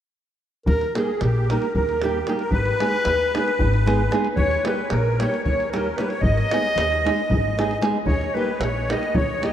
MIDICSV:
0, 0, Header, 1, 6, 480
1, 0, Start_track
1, 0, Tempo, 528634
1, 608, Time_signature, 7, 3, 24, 8
1, 8652, End_track
2, 0, Start_track
2, 0, Title_t, "Accordion"
2, 0, Program_c, 0, 21
2, 613, Note_on_c, 0, 70, 60
2, 856, Note_off_c, 0, 70, 0
2, 860, Note_on_c, 0, 68, 56
2, 1095, Note_off_c, 0, 68, 0
2, 1104, Note_on_c, 0, 67, 64
2, 1359, Note_on_c, 0, 70, 81
2, 1366, Note_off_c, 0, 67, 0
2, 1569, Note_off_c, 0, 70, 0
2, 1583, Note_on_c, 0, 70, 75
2, 1819, Note_off_c, 0, 70, 0
2, 1838, Note_on_c, 0, 67, 65
2, 2063, Note_off_c, 0, 67, 0
2, 2066, Note_on_c, 0, 68, 57
2, 2116, Note_off_c, 0, 68, 0
2, 2177, Note_on_c, 0, 70, 81
2, 2281, Note_off_c, 0, 70, 0
2, 2291, Note_on_c, 0, 71, 92
2, 3747, Note_off_c, 0, 71, 0
2, 3955, Note_on_c, 0, 73, 86
2, 4207, Note_off_c, 0, 73, 0
2, 4216, Note_on_c, 0, 71, 66
2, 4437, Note_off_c, 0, 71, 0
2, 4454, Note_on_c, 0, 70, 65
2, 4713, Note_on_c, 0, 73, 78
2, 4722, Note_off_c, 0, 70, 0
2, 4923, Note_off_c, 0, 73, 0
2, 4937, Note_on_c, 0, 73, 73
2, 5176, Note_off_c, 0, 73, 0
2, 5193, Note_on_c, 0, 70, 61
2, 5418, Note_on_c, 0, 71, 68
2, 5421, Note_off_c, 0, 70, 0
2, 5527, Note_on_c, 0, 73, 76
2, 5533, Note_off_c, 0, 71, 0
2, 5644, Note_off_c, 0, 73, 0
2, 5649, Note_on_c, 0, 75, 96
2, 7068, Note_off_c, 0, 75, 0
2, 7341, Note_on_c, 0, 73, 77
2, 7579, Note_off_c, 0, 73, 0
2, 7598, Note_on_c, 0, 71, 78
2, 7820, Note_on_c, 0, 73, 81
2, 7823, Note_off_c, 0, 71, 0
2, 8083, Note_off_c, 0, 73, 0
2, 8092, Note_on_c, 0, 75, 86
2, 8315, Note_off_c, 0, 75, 0
2, 8320, Note_on_c, 0, 73, 81
2, 8563, Note_off_c, 0, 73, 0
2, 8570, Note_on_c, 0, 75, 75
2, 8652, Note_off_c, 0, 75, 0
2, 8652, End_track
3, 0, Start_track
3, 0, Title_t, "Clarinet"
3, 0, Program_c, 1, 71
3, 600, Note_on_c, 1, 70, 114
3, 871, Note_on_c, 1, 68, 91
3, 884, Note_off_c, 1, 70, 0
3, 1095, Note_on_c, 1, 67, 71
3, 1108, Note_off_c, 1, 68, 0
3, 1372, Note_on_c, 1, 70, 71
3, 1386, Note_off_c, 1, 67, 0
3, 1590, Note_off_c, 1, 70, 0
3, 1596, Note_on_c, 1, 70, 94
3, 1842, Note_on_c, 1, 67, 75
3, 1856, Note_off_c, 1, 70, 0
3, 2047, Note_off_c, 1, 67, 0
3, 2052, Note_on_c, 1, 68, 83
3, 2106, Note_off_c, 1, 68, 0
3, 2172, Note_on_c, 1, 70, 87
3, 2281, Note_on_c, 1, 71, 127
3, 2295, Note_off_c, 1, 70, 0
3, 3742, Note_off_c, 1, 71, 0
3, 3967, Note_on_c, 1, 73, 112
3, 4213, Note_off_c, 1, 73, 0
3, 4233, Note_on_c, 1, 71, 81
3, 4465, Note_on_c, 1, 70, 87
3, 4479, Note_off_c, 1, 71, 0
3, 4716, Note_on_c, 1, 73, 70
3, 4730, Note_off_c, 1, 70, 0
3, 4929, Note_off_c, 1, 73, 0
3, 4934, Note_on_c, 1, 73, 96
3, 5177, Note_on_c, 1, 70, 82
3, 5190, Note_off_c, 1, 73, 0
3, 5415, Note_on_c, 1, 71, 76
3, 5429, Note_off_c, 1, 70, 0
3, 5534, Note_on_c, 1, 73, 74
3, 5547, Note_off_c, 1, 71, 0
3, 5628, Note_off_c, 1, 73, 0
3, 5634, Note_on_c, 1, 75, 127
3, 7060, Note_off_c, 1, 75, 0
3, 7317, Note_on_c, 1, 73, 100
3, 7571, Note_on_c, 1, 71, 84
3, 7585, Note_off_c, 1, 73, 0
3, 7810, Note_on_c, 1, 73, 96
3, 7823, Note_off_c, 1, 71, 0
3, 8088, Note_on_c, 1, 75, 82
3, 8101, Note_off_c, 1, 73, 0
3, 8317, Note_on_c, 1, 73, 94
3, 8330, Note_off_c, 1, 75, 0
3, 8573, Note_on_c, 1, 75, 91
3, 8587, Note_off_c, 1, 73, 0
3, 8652, Note_off_c, 1, 75, 0
3, 8652, End_track
4, 0, Start_track
4, 0, Title_t, "Nylon-string guitar"
4, 0, Program_c, 2, 24
4, 860, Note_on_c, 2, 55, 51
4, 862, Note_on_c, 2, 58, 47
4, 868, Note_on_c, 2, 63, 51
4, 877, Note_on_c, 2, 67, 68
4, 996, Note_off_c, 2, 55, 0
4, 998, Note_off_c, 2, 58, 0
4, 999, Note_off_c, 2, 63, 0
4, 1004, Note_off_c, 2, 67, 0
4, 1360, Note_on_c, 2, 55, 58
4, 1369, Note_on_c, 2, 58, 60
4, 1373, Note_on_c, 2, 63, 59
4, 1378, Note_on_c, 2, 67, 60
4, 1492, Note_off_c, 2, 55, 0
4, 1497, Note_off_c, 2, 58, 0
4, 1498, Note_off_c, 2, 63, 0
4, 1501, Note_off_c, 2, 67, 0
4, 1845, Note_on_c, 2, 55, 70
4, 1852, Note_on_c, 2, 58, 61
4, 1855, Note_on_c, 2, 63, 47
4, 1861, Note_on_c, 2, 67, 74
4, 1970, Note_off_c, 2, 55, 0
4, 1974, Note_off_c, 2, 58, 0
4, 1976, Note_off_c, 2, 63, 0
4, 1978, Note_off_c, 2, 67, 0
4, 2059, Note_on_c, 2, 55, 56
4, 2068, Note_on_c, 2, 58, 62
4, 2075, Note_on_c, 2, 63, 60
4, 2080, Note_on_c, 2, 67, 69
4, 2189, Note_off_c, 2, 55, 0
4, 2193, Note_off_c, 2, 58, 0
4, 2197, Note_off_c, 2, 63, 0
4, 2200, Note_off_c, 2, 67, 0
4, 2540, Note_on_c, 2, 56, 64
4, 2545, Note_on_c, 2, 59, 51
4, 2549, Note_on_c, 2, 63, 49
4, 2555, Note_on_c, 2, 68, 66
4, 2676, Note_off_c, 2, 56, 0
4, 2679, Note_off_c, 2, 59, 0
4, 2681, Note_off_c, 2, 63, 0
4, 2684, Note_off_c, 2, 68, 0
4, 3036, Note_on_c, 2, 56, 60
4, 3040, Note_on_c, 2, 59, 76
4, 3045, Note_on_c, 2, 63, 56
4, 3057, Note_on_c, 2, 68, 72
4, 3171, Note_off_c, 2, 56, 0
4, 3172, Note_off_c, 2, 59, 0
4, 3175, Note_off_c, 2, 63, 0
4, 3181, Note_off_c, 2, 68, 0
4, 3507, Note_on_c, 2, 56, 85
4, 3512, Note_on_c, 2, 63, 66
4, 3513, Note_on_c, 2, 59, 73
4, 3520, Note_on_c, 2, 68, 81
4, 3642, Note_off_c, 2, 56, 0
4, 3643, Note_off_c, 2, 63, 0
4, 3645, Note_off_c, 2, 59, 0
4, 3648, Note_off_c, 2, 68, 0
4, 3732, Note_on_c, 2, 56, 79
4, 3736, Note_on_c, 2, 59, 62
4, 3738, Note_on_c, 2, 63, 64
4, 3743, Note_on_c, 2, 68, 81
4, 3866, Note_off_c, 2, 56, 0
4, 3867, Note_off_c, 2, 59, 0
4, 3869, Note_off_c, 2, 63, 0
4, 3871, Note_off_c, 2, 68, 0
4, 4215, Note_on_c, 2, 55, 54
4, 4221, Note_on_c, 2, 58, 54
4, 4224, Note_on_c, 2, 63, 52
4, 4233, Note_on_c, 2, 67, 64
4, 4354, Note_off_c, 2, 55, 0
4, 4356, Note_off_c, 2, 58, 0
4, 4358, Note_off_c, 2, 63, 0
4, 4363, Note_off_c, 2, 67, 0
4, 4722, Note_on_c, 2, 55, 62
4, 4728, Note_on_c, 2, 58, 54
4, 4738, Note_on_c, 2, 63, 60
4, 4743, Note_on_c, 2, 67, 63
4, 4854, Note_off_c, 2, 55, 0
4, 4856, Note_off_c, 2, 58, 0
4, 4862, Note_off_c, 2, 63, 0
4, 4864, Note_off_c, 2, 67, 0
4, 5202, Note_on_c, 2, 55, 62
4, 5207, Note_on_c, 2, 58, 59
4, 5210, Note_on_c, 2, 63, 59
4, 5217, Note_on_c, 2, 67, 73
4, 5329, Note_off_c, 2, 55, 0
4, 5331, Note_off_c, 2, 58, 0
4, 5333, Note_off_c, 2, 63, 0
4, 5337, Note_off_c, 2, 67, 0
4, 5429, Note_on_c, 2, 55, 53
4, 5433, Note_on_c, 2, 58, 59
4, 5441, Note_on_c, 2, 63, 55
4, 5449, Note_on_c, 2, 67, 58
4, 5554, Note_off_c, 2, 55, 0
4, 5556, Note_off_c, 2, 58, 0
4, 5560, Note_off_c, 2, 63, 0
4, 5564, Note_off_c, 2, 67, 0
4, 5921, Note_on_c, 2, 56, 55
4, 5925, Note_on_c, 2, 59, 60
4, 5930, Note_on_c, 2, 63, 48
4, 5937, Note_on_c, 2, 68, 60
4, 6047, Note_off_c, 2, 56, 0
4, 6049, Note_off_c, 2, 59, 0
4, 6050, Note_off_c, 2, 63, 0
4, 6055, Note_off_c, 2, 68, 0
4, 6399, Note_on_c, 2, 56, 67
4, 6403, Note_on_c, 2, 59, 60
4, 6411, Note_on_c, 2, 63, 67
4, 6415, Note_on_c, 2, 68, 74
4, 6531, Note_off_c, 2, 56, 0
4, 6535, Note_off_c, 2, 59, 0
4, 6536, Note_off_c, 2, 63, 0
4, 6540, Note_off_c, 2, 68, 0
4, 6878, Note_on_c, 2, 56, 65
4, 6882, Note_on_c, 2, 59, 54
4, 6890, Note_on_c, 2, 63, 64
4, 6896, Note_on_c, 2, 68, 72
4, 7006, Note_off_c, 2, 56, 0
4, 7008, Note_off_c, 2, 59, 0
4, 7013, Note_off_c, 2, 63, 0
4, 7014, Note_off_c, 2, 68, 0
4, 7095, Note_on_c, 2, 56, 80
4, 7101, Note_on_c, 2, 59, 54
4, 7106, Note_on_c, 2, 63, 66
4, 7110, Note_on_c, 2, 68, 82
4, 7227, Note_off_c, 2, 56, 0
4, 7229, Note_off_c, 2, 59, 0
4, 7232, Note_off_c, 2, 63, 0
4, 7234, Note_off_c, 2, 68, 0
4, 7579, Note_on_c, 2, 55, 52
4, 7583, Note_on_c, 2, 58, 52
4, 7590, Note_on_c, 2, 63, 51
4, 7597, Note_on_c, 2, 67, 66
4, 7714, Note_off_c, 2, 55, 0
4, 7717, Note_off_c, 2, 58, 0
4, 7720, Note_off_c, 2, 63, 0
4, 7724, Note_off_c, 2, 67, 0
4, 8067, Note_on_c, 2, 55, 58
4, 8072, Note_on_c, 2, 58, 50
4, 8077, Note_on_c, 2, 63, 51
4, 8085, Note_on_c, 2, 67, 62
4, 8205, Note_off_c, 2, 55, 0
4, 8207, Note_off_c, 2, 58, 0
4, 8209, Note_off_c, 2, 63, 0
4, 8213, Note_off_c, 2, 67, 0
4, 8550, Note_on_c, 2, 55, 50
4, 8554, Note_on_c, 2, 58, 56
4, 8556, Note_on_c, 2, 63, 60
4, 8564, Note_on_c, 2, 67, 72
4, 8652, Note_off_c, 2, 55, 0
4, 8652, Note_off_c, 2, 58, 0
4, 8652, Note_off_c, 2, 63, 0
4, 8652, Note_off_c, 2, 67, 0
4, 8652, End_track
5, 0, Start_track
5, 0, Title_t, "Upright bass"
5, 0, Program_c, 3, 32
5, 611, Note_on_c, 3, 39, 98
5, 769, Note_off_c, 3, 39, 0
5, 1101, Note_on_c, 3, 34, 80
5, 1397, Note_off_c, 3, 34, 0
5, 1588, Note_on_c, 3, 39, 72
5, 2006, Note_off_c, 3, 39, 0
5, 2288, Note_on_c, 3, 32, 82
5, 2447, Note_off_c, 3, 32, 0
5, 2777, Note_on_c, 3, 39, 63
5, 3074, Note_off_c, 3, 39, 0
5, 3273, Note_on_c, 3, 32, 78
5, 3691, Note_off_c, 3, 32, 0
5, 3966, Note_on_c, 3, 39, 85
5, 4126, Note_off_c, 3, 39, 0
5, 4461, Note_on_c, 3, 34, 78
5, 4757, Note_off_c, 3, 34, 0
5, 4953, Note_on_c, 3, 39, 70
5, 5370, Note_off_c, 3, 39, 0
5, 5645, Note_on_c, 3, 32, 77
5, 5804, Note_off_c, 3, 32, 0
5, 6138, Note_on_c, 3, 39, 78
5, 6434, Note_off_c, 3, 39, 0
5, 6628, Note_on_c, 3, 32, 78
5, 7046, Note_off_c, 3, 32, 0
5, 7317, Note_on_c, 3, 39, 72
5, 7478, Note_off_c, 3, 39, 0
5, 7809, Note_on_c, 3, 34, 64
5, 8107, Note_off_c, 3, 34, 0
5, 8305, Note_on_c, 3, 39, 69
5, 8652, Note_off_c, 3, 39, 0
5, 8652, End_track
6, 0, Start_track
6, 0, Title_t, "Davul"
6, 602, Note_on_c, 9, 43, 82
6, 693, Note_off_c, 9, 43, 0
6, 739, Note_on_c, 9, 37, 24
6, 829, Note_off_c, 9, 37, 0
6, 866, Note_on_c, 9, 37, 55
6, 957, Note_off_c, 9, 37, 0
6, 1098, Note_on_c, 9, 37, 51
6, 1188, Note_off_c, 9, 37, 0
6, 1362, Note_on_c, 9, 37, 51
6, 1452, Note_off_c, 9, 37, 0
6, 1468, Note_on_c, 9, 37, 24
6, 1559, Note_off_c, 9, 37, 0
6, 1591, Note_on_c, 9, 43, 65
6, 1682, Note_off_c, 9, 43, 0
6, 1714, Note_on_c, 9, 37, 22
6, 1805, Note_off_c, 9, 37, 0
6, 1830, Note_on_c, 9, 37, 53
6, 1921, Note_off_c, 9, 37, 0
6, 2060, Note_on_c, 9, 37, 46
6, 2151, Note_off_c, 9, 37, 0
6, 2170, Note_on_c, 9, 37, 24
6, 2261, Note_off_c, 9, 37, 0
6, 2277, Note_on_c, 9, 43, 65
6, 2367, Note_off_c, 9, 43, 0
6, 2410, Note_on_c, 9, 37, 23
6, 2501, Note_off_c, 9, 37, 0
6, 2546, Note_on_c, 9, 37, 59
6, 2637, Note_off_c, 9, 37, 0
6, 2770, Note_on_c, 9, 37, 57
6, 2861, Note_off_c, 9, 37, 0
6, 3040, Note_on_c, 9, 37, 56
6, 3131, Note_off_c, 9, 37, 0
6, 3157, Note_on_c, 9, 37, 26
6, 3247, Note_off_c, 9, 37, 0
6, 3261, Note_on_c, 9, 43, 79
6, 3352, Note_off_c, 9, 43, 0
6, 3392, Note_on_c, 9, 37, 22
6, 3483, Note_off_c, 9, 37, 0
6, 3518, Note_on_c, 9, 37, 54
6, 3609, Note_off_c, 9, 37, 0
6, 3741, Note_on_c, 9, 37, 57
6, 3832, Note_off_c, 9, 37, 0
6, 3855, Note_on_c, 9, 37, 26
6, 3946, Note_off_c, 9, 37, 0
6, 3963, Note_on_c, 9, 43, 73
6, 4054, Note_off_c, 9, 43, 0
6, 4098, Note_on_c, 9, 37, 23
6, 4188, Note_off_c, 9, 37, 0
6, 4221, Note_on_c, 9, 37, 63
6, 4312, Note_off_c, 9, 37, 0
6, 4451, Note_on_c, 9, 37, 61
6, 4542, Note_off_c, 9, 37, 0
6, 4720, Note_on_c, 9, 37, 61
6, 4811, Note_off_c, 9, 37, 0
6, 4847, Note_on_c, 9, 37, 28
6, 4938, Note_off_c, 9, 37, 0
6, 4954, Note_on_c, 9, 43, 71
6, 5045, Note_off_c, 9, 43, 0
6, 5086, Note_on_c, 9, 37, 21
6, 5177, Note_off_c, 9, 37, 0
6, 5208, Note_on_c, 9, 37, 54
6, 5299, Note_off_c, 9, 37, 0
6, 5430, Note_on_c, 9, 37, 52
6, 5521, Note_off_c, 9, 37, 0
6, 5540, Note_on_c, 9, 37, 27
6, 5631, Note_off_c, 9, 37, 0
6, 5652, Note_on_c, 9, 43, 77
6, 5743, Note_off_c, 9, 43, 0
6, 5788, Note_on_c, 9, 37, 23
6, 5879, Note_off_c, 9, 37, 0
6, 5915, Note_on_c, 9, 37, 64
6, 6006, Note_off_c, 9, 37, 0
6, 6039, Note_on_c, 9, 37, 18
6, 6129, Note_off_c, 9, 37, 0
6, 6154, Note_on_c, 9, 37, 67
6, 6245, Note_off_c, 9, 37, 0
6, 6285, Note_on_c, 9, 37, 27
6, 6376, Note_off_c, 9, 37, 0
6, 6416, Note_on_c, 9, 37, 55
6, 6507, Note_off_c, 9, 37, 0
6, 6635, Note_on_c, 9, 43, 87
6, 6726, Note_off_c, 9, 43, 0
6, 6889, Note_on_c, 9, 37, 58
6, 6980, Note_off_c, 9, 37, 0
6, 7000, Note_on_c, 9, 37, 25
6, 7091, Note_off_c, 9, 37, 0
6, 7105, Note_on_c, 9, 37, 55
6, 7196, Note_off_c, 9, 37, 0
6, 7324, Note_on_c, 9, 43, 91
6, 7415, Note_off_c, 9, 43, 0
6, 7457, Note_on_c, 9, 37, 22
6, 7548, Note_off_c, 9, 37, 0
6, 7815, Note_on_c, 9, 37, 70
6, 7906, Note_off_c, 9, 37, 0
6, 8081, Note_on_c, 9, 37, 65
6, 8172, Note_off_c, 9, 37, 0
6, 8198, Note_on_c, 9, 37, 25
6, 8289, Note_off_c, 9, 37, 0
6, 8306, Note_on_c, 9, 43, 100
6, 8397, Note_off_c, 9, 43, 0
6, 8562, Note_on_c, 9, 37, 56
6, 8652, Note_off_c, 9, 37, 0
6, 8652, End_track
0, 0, End_of_file